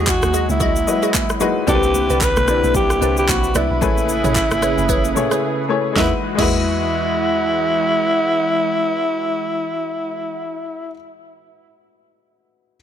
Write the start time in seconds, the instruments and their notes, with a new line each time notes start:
Already playing: log drum bass E2, analog synth pad F#3 G#3 F#4, grand piano G#3 D#4 E4 F#4 G#4 B4
0.07 alto saxophone F#4, kick, clap, shaker
0.22 log drum bass D#2, cross-stick, high conga, shaker
0.34 synth pluck F#4 G#4 D#5, shaker
0.49 log drum bass C#2, alto saxophone E4, high conga, shaker
0.60 synth pluck F#4 G#4 D#5, kick, low conga, shaker
0.76 high conga, shaker
0.86 grand piano F#3 E4 F#4 B4 D#5, shaker
0.93 grand piano G#3
1.03 synth pluck F#4 G#4 D#5, shaker
1.14 kick, clap, high conga, shaker
1.29 cross-stick, shaker
1.40 grand piano G#3 D#4 E4 F#4 B4, synth pluck F#4 G#4 D#5, high conga, low conga, shaker
1.67 log drum bass C2, analog synth pad D3 E4 B4, grand piano C4 D4 E4 G4 A4, synth pluck E4 B4 D5, alto saxophone G4, kick, low conga, shaker
1.75 grand piano B4
1.83 high conga, shaker
1.94 high conga, shaker
2.10 log drum bass C2, synth pluck E4 B4 D5, shaker
2.21 alto saxophone B4, kick, clap, shaker
2.37 log drum bass B1, cross-stick, high conga, shaker
2.47 grand piano C4 D4 E4 G4 D5, cross-stick, shaker
2.64 log drum bass B1, high conga, shaker
2.74 alto saxophone G4, kick, low conga, shaker
2.90 cross-stick, high conga, shaker
3.01 log drum bass C2, grand piano C4 D4 E4 G4 B4, synth pluck E4 B4 D5, shaker
3.17 alto saxophone G4, shaker
3.29 log drum bass B1, alto saxophone F#4, kick, clap, high conga, shaker
3.44 shaker
3.55 log drum bass C2, synth pluck E4 B4 D5, alto saxophone E4, cross-stick, high conga, low conga, shaker
3.71 log drum bass B1
3.81 log drum bass A1, analog synth pad C#3 G#4, grand piano A3 C#4 E4 G#4 B4, kick, low conga, shaker
3.98 high conga, shaker
4.09 high conga, shaker
4.24 log drum bass A1, synth pluck G#4 B4 C#5, mid tom, shaker
4.35 kick, clap, shaker
4.51 log drum bass G#1, cross-stick, high conga, shaker
4.62 synth pluck G#4 B4 C#5, cross-stick, shaker
4.78 log drum bass F#1, high conga, shaker
4.89 synth pluck G#4 B4 C#5, kick, low conga, shaker
5.05 high conga, shaker
5.15 grand piano A3 C#4 E4 G#4 C#5, mid tom, shaker
5.31 synth pluck G#4 B4 C#5, cross-stick, shaker
5.68 grand piano A3 C#4 E4 G#4 C#5
5.93 log drum bass E2, analog synth pad E3 G#3 F#4, grand piano G#3 D#4 E4, synth pluck F#4 G#4, kick, snare, high conga
5.97 alto saxophone E4, grand piano F#4 B4, synth pluck D#5
6.35 log drum bass E2, grand piano G#3 E4 D#5, synth pluck F#4 G#4, kick, crash, high conga
6.39 alto saxophone E4, grand piano F#4 B4, synth pluck D#5